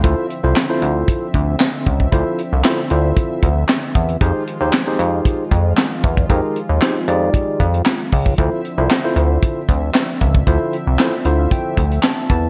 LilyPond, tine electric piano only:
\new Staff \with { instrumentName = "Tine electric piano" } { \time 4/4 \key d \minor \tempo 4 = 115 << { r1 | r1 | r1 | r1 |
r1 | r4. e''16 f''16 g''4 a''8 a''8 | } \\ { <e' f' a' c''>8 r16 <e' f' a' c''>16 r16 <e' f' a' c''>4 r4. r16 | <e' f' a' c''>8 r8 <e' f' a' c''>16 r16 <e' f' a' c''>4 r4. | <ees' g' aes' c''>8 r16 <ees' g' aes' c''>16 r16 <ees' g' aes' c''>4 r4. r16 | <ees' g' aes' bes'>8 r8 <ees' g' aes' c''>16 r16 <ees' g' aes' d''>4 r4. |
<e' f' a' c''>8 r16 <e' f' a' c''>16 r16 <e' f' a' c''>4 r4. r16 | <e' f' a' c''>8 r8 <e' f' a' c''>16 r16 <e' f' a' c''>4 r4. | } >> }